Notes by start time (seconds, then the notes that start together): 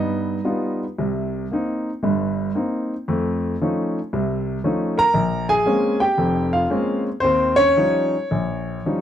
Already playing: G2 B3 D#4 D#5
0.45 G3 B3 D#4 F4
0.98 C2 C3
1.52 A#3 C4 D#4
2.03 G1 G2
2.55 A#3 C4 D#4
3.08 F2 A3
3.61 F3 A3 C#4 D#4
4.13 C2 C3
4.64 F3 A3 C#4 D#4
4.98 A#4 A#5
5.14 A#1
5.49 G#4 G#5
5.66 G#3 A#3 C4 C#4
6.00 G4 G5
6.18 F1 F2
6.53 F4 F5
6.70 G#3 A#3 C4 C#4
7.20 D#2 C4 C5
7.56 C#4 C#5
7.77 F3 G3 C#4 D#4
8.31 A#1
8.86 F3 G3 C#4 D#4